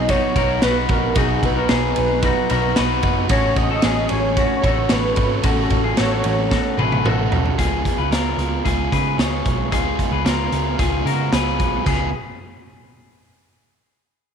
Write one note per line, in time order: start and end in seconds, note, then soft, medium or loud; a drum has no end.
0.00 0.16 B1 loud
0.00 0.63 F#3 medium
0.00 0.36 B3 medium
0.00 0.36 D#4 medium
0.00 0.36 F#4 medium
0.00 0.12 D#5 loud
0.09 0.37 D#4 medium
0.09 0.36 F#4 medium
0.09 0.63 C#5 loud
0.09 kick loud
0.09 ride medium
0.36 0.58 B1 loud
0.36 0.63 B3 soft
0.36 0.63 D#4 medium
0.36 0.63 F#4 medium
0.36 0.63 A#4 medium
0.36 kick medium
0.36 ride medium
0.62 0.85 B1 medium
0.62 0.90 F#3 medium
0.62 0.89 B3 medium
0.62 0.88 D#4 medium
0.62 1.14 F#4 medium
0.62 0.87 F#4 medium
0.62 1.13 B4 medium
0.62 0.75 B4 loud
0.62 snare loud
0.62 ride medium
0.88 1.12 A#1 medium
0.88 1.15 B3 soft
0.88 1.15 D#4 soft
0.88 1.16 F#4 medium
0.88 1.19 A#4 medium
0.88 kick loud
0.88 ride medium
1.15 1.38 B1 loud
1.15 1.43 B2 medium
1.15 1.43 F#3 medium
1.15 1.43 B3 medium
1.15 1.42 D#4 medium
1.15 1.54 D#4 medium
1.15 1.54 F#4 loud
1.15 1.41 F#4 medium
1.15 1.47 G#4 loud
1.15 kick loud
1.15 ride medium
1.42 1.65 B1 loud
1.42 1.69 B3 soft
1.42 1.69 D#4 medium
1.42 1.69 F#4 medium
1.42 1.98 B4 loud
1.42 kick medium
1.42 ride medium
1.56 1.69 F#4 soft
1.56 1.70 A#4 medium
1.69 1.92 B1 loud
1.69 2.75 F#3 medium
1.69 2.50 B3 medium
1.69 2.20 D#4 medium
1.69 2.49 D#4 medium
1.69 2.49 F#4 medium
1.69 2.20 G#4 medium
1.69 snare loud
1.69 ride medium
1.96 2.30 B1 loud
1.96 3.00 B4 loud
1.96 ride medium
2.22 2.50 D#4 medium
2.22 2.49 F#4 medium
2.22 kick loud
2.22 ride medium
2.49 2.73 B1 loud
2.49 2.75 B3 soft
2.49 2.76 D#4 medium
2.49 2.76 F#4 medium
2.49 2.76 F#4 soft
2.49 2.76 A#4 medium
2.49 ride medium
2.75 3.00 B1 loud
2.75 3.03 F#3 medium
2.75 3.03 B3 medium
2.75 3.03 D#4 medium
2.75 3.27 F#4 medium
2.75 3.01 F#4 medium
2.75 3.27 B4 medium
2.75 snare loud
2.75 ride medium
3.02 3.25 F#1 medium
3.02 3.29 B3 soft
3.02 3.29 D#4 medium
3.02 3.28 F#4 medium
3.02 kick loud
3.02 ride medium
3.29 3.52 A1 loud
3.29 3.56 A3 medium
3.29 3.56 C#4 medium
3.29 3.68 C#4 medium
3.29 3.55 F#4 loud
3.29 3.68 F#4 loud
3.29 3.54 A4 loud
3.29 3.59 C#5 loud
3.29 kick loud
3.29 ride medium
3.55 3.79 A1 loud
3.55 3.81 C#4 soft
3.55 3.82 F#4 soft
3.55 3.83 A4 medium
3.55 4.10 D#5 loud
3.55 kick medium
3.55 ride medium
3.71 3.83 F#4 medium
3.71 3.84 A4 medium
3.82 4.06 A1 loud
3.82 4.63 A3 medium
3.82 4.64 C#4 medium
3.82 4.35 C#4 medium
3.82 4.62 F#4 medium
3.82 4.34 G#4 medium
3.82 4.61 A4 medium
3.82 snare loud
3.82 ride medium
4.09 4.44 A1 loud
4.09 4.93 C#5 loud
4.09 ride medium
4.37 4.64 C#4 medium
4.37 4.63 F#4 medium
4.37 kick loud
4.37 ride medium
4.62 4.86 A1 loud
4.62 4.89 C#4 soft
4.62 4.89 F#4 medium
4.62 4.91 F#4 medium
4.62 4.90 A4 medium
4.62 4.89 A4 medium
4.62 kick medium
4.62 ride medium
4.89 5.13 A1 loud
4.89 5.17 A3 medium
4.89 5.17 C#4 medium
4.89 5.16 F#4 medium
4.89 5.41 A4 medium
4.89 5.15 A4 medium
4.89 5.47 B4 loud
4.89 5.40 C#5 medium
4.89 snare loud
4.89 ride medium
5.16 5.39 G#1 loud
5.16 5.42 C#4 medium
5.16 5.43 F#4 soft
5.16 5.43 A4 medium
5.16 kick loud
5.16 ride medium
5.43 5.66 A1 loud
5.43 5.70 A3 medium
5.43 5.70 C#4 medium
5.43 5.82 C#4 medium
5.43 5.82 F#4 loud
5.43 5.69 F#4 loud
5.43 5.68 A4 loud
5.43 5.98 A4 medium
5.43 kick loud
5.43 ride medium
5.69 5.93 A1 loud
5.69 5.96 C#4 medium
5.69 5.96 F#4 medium
5.69 5.97 A4 medium
5.69 kick medium
5.69 ride medium
5.84 5.98 F4 soft
5.84 5.97 G#4 medium
5.96 6.20 A1 loud
5.96 6.77 A3 medium
5.96 6.79 C#4 medium
5.96 6.77 F#4 medium
5.96 6.48 F#4 medium
5.96 6.48 A4 medium
5.96 6.76 A4 medium
5.96 6.75 C#5 medium
5.96 snare loud
5.96 ride medium
6.24 6.58 A1 loud
6.24 ride medium
6.51 6.78 F#4 medium
6.51 6.78 A4 medium
6.51 kick loud
6.51 snare medium
6.77 7.00 A1 loud
6.77 7.04 C#4 medium
6.77 7.04 F#4 medium
6.77 7.05 G#4 medium
6.77 7.04 A4 medium
6.77 7.05 B4 medium
6.77 high tom medium
6.92 high tom medium
7.04 7.27 A1 loud
7.04 7.31 A3 medium
7.04 7.32 C#4 medium
7.04 7.32 F#4 medium
7.04 7.56 F#4 medium
7.04 7.55 A4 medium
7.04 7.31 A4 medium
7.04 mid tom loud
7.31 7.53 B1 loud
7.31 7.59 C#4 soft
7.31 7.59 F#4 medium
7.31 7.59 A4 medium
7.31 floor tom loud
7.46 floor tom loud
7.58 7.81 C#2 loud
7.58 7.85 C#3 medium
7.58 7.85 G#3 medium
7.58 7.86 B3 medium
7.58 7.96 F4 medium
7.58 7.85 F4 medium
7.58 7.96 G#4 loud
7.58 7.84 G#4 loud
7.58 kick loud
7.58 closed hi-hat medium
7.85 8.11 B3 soft
7.85 8.12 F4 medium
7.85 8.12 G#4 medium
7.85 kick medium
7.85 closed hi-hat medium
7.98 8.09 C#2 medium
7.98 8.12 G#4 soft
7.98 8.11 B4 medium
8.11 8.33 C#2 loud
8.11 8.38 G#3 medium
8.11 8.39 B3 medium
8.11 8.62 F4 medium
8.11 8.38 F4 medium
8.11 8.37 G#4 medium
8.11 8.62 A#4 medium
8.11 snare loud
8.11 closed hi-hat medium
8.38 8.60 C#2 medium
8.38 8.64 B3 soft
8.38 8.65 F4 soft
8.38 8.65 G#4 medium
8.38 closed hi-hat medium
8.65 8.88 C#2 medium
8.65 9.19 C#3 medium
8.65 9.17 G#3 medium
8.65 9.18 B3 medium
8.65 8.92 F4 medium
8.65 9.19 F4 medium
8.65 8.92 G#4 medium
8.65 9.20 G#4 medium
8.65 kick medium
8.65 closed hi-hat medium
8.92 9.14 C#3 loud
8.92 9.18 G#4 medium
8.92 9.19 B4 medium
8.92 kick medium
8.92 closed hi-hat medium
9.18 9.40 C#2 medium
9.18 9.71 G#3 medium
9.18 9.72 B3 medium
9.18 9.72 F4 medium
9.18 9.69 G#4 soft
9.18 9.72 G#4 medium
9.18 9.69 C#5 medium
9.18 snare loud
9.18 closed hi-hat loud
9.45 9.73 B1 medium
9.45 kick loud
9.45 closed hi-hat medium
9.71 9.95 C#2 loud
9.71 10.25 C#3 medium
9.71 10.25 G#3 loud
9.71 10.25 B3 medium
9.71 10.26 F4 loud
9.71 10.10 F4 medium
9.71 10.10 G#4 loud
9.71 10.27 G#4 loud
9.71 kick loud
9.71 closed hi-hat loud
9.99 kick medium
9.99 closed hi-hat medium
10.12 10.23 C#2 medium
10.12 10.25 G#4 medium
10.12 10.25 B4 medium
10.25 10.48 C#2 loud
10.25 10.52 G#3 medium
10.25 10.53 B3 medium
10.25 10.76 F4 medium
10.25 10.52 F4 medium
10.25 10.51 G#4 medium
10.25 10.76 A#4 medium
10.25 snare loud
10.25 closed hi-hat medium
10.52 10.74 C#2 loud
10.52 10.78 B3 soft
10.52 10.78 F4 medium
10.52 10.78 G#4 medium
10.52 closed hi-hat medium
10.78 11.02 C#2 loud
10.78 11.32 C#3 medium
10.78 11.32 G#3 medium
10.78 11.33 B3 medium
10.78 11.33 F4 medium
10.78 11.07 F4 medium
10.78 11.06 G#4 medium
10.78 11.34 G#4 loud
10.78 kick medium
10.78 closed hi-hat medium
11.05 11.28 C#3 loud
11.05 11.33 F#4 medium
11.05 11.33 A#4 medium
11.05 closed hi-hat medium
11.32 11.60 C#2 loud
11.32 11.86 G#3 medium
11.32 11.86 B3 medium
11.32 11.87 F4 medium
11.32 11.84 G#4 medium
11.32 11.87 G#4 medium
11.32 11.84 B4 medium
11.32 snare loud
11.32 closed hi-hat loud
11.59 11.82 B1 loud
11.59 kick loud
11.59 closed hi-hat medium
11.85 12.12 C#2 medium
11.85 12.07 C#3 medium
11.85 12.08 G#3 medium
11.85 12.08 B3 medium
11.85 12.08 F4 loud
11.85 12.12 G#4 medium
11.85 12.09 G#4 medium
11.85 kick loud
11.85 crash medium